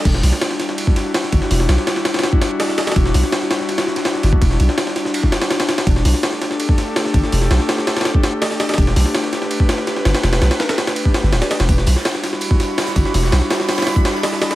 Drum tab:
CC |x-------------------------------|--------------------------------|--------------------------------|--------------------------------|
RD |x-------x---x---x---x---x---x---|----x---x---x-xxx---x---x---x-xx|x-------x---x---x-x---x-x---x---|x---x---x---x---x---x-x-x-x-x-x-|
HH |----o---------------------------|o-------------------------------|----o---------------------------|--------------------------------|
TB |--------------------------------|--------------------------------|--------------------------------|--------------------------------|
SD |--o-o-o-o-o-o-o-----o---o-o---o-|o-o-o-o-o-o-o-ooo---o---o-o-o-oo|--o-o-o-o-o-o-o-o-o-o-o-o-o-o---|--o---o-o-o-o-o-----o-o-o-o-o-o-|
BD |o-----------------o---------o---|------------------o-------------|o-----------------------------o-|o-----------------o-------------|

CC |--------------------------------|--------------------------------|--------------------------------|--------------------------------|
RD |x-------x---x---x---x---x---x---|----x---x---x-xxx---x---x---x-xx|x-------x---x---x---x---x---x-x-|x-x-x-x-x-x-x-x-x---x---x-x-x-x-|
HH |----o---------------------------|o-------------------------------|----o---------------------------|--------------------------------|
TB |--------------------------------|--------------------------------|--------------------------------|--------------------------------|
SD |--o-o-o-o-o-o-o-----o---o-o---o-|o-o-o-o-o-o-o-ooo---o---o-o-o-oo|--o-o-o-o-o-o-o-----o-o-o-o-o-o-|o-o-o-o-o-o-o-o-----o-o-o-o-o-o-|
BD |o-----------------o---------o---|------------------o-------------|o-----------------o-------------|------------------o-------------|

CC |--------------------------------|--------------------------------|
RD |x-------x---x---x---x---x---x---|----x---x---x-xxx---x---x---x-x-|
HH |----o---------------------x-----|o-----------o-----x-------------|
TB |x---x---x---x---x---x---x---x---|x---x---x-------x---x---x---x---|
SD |--o-o-o-o-o-o-o-----o---o-o---o-|o-o-o-o-o-o-o-ooo---o-o-o-o-o-o-|
BD |o-----------------o---------o---|------------------o-------------|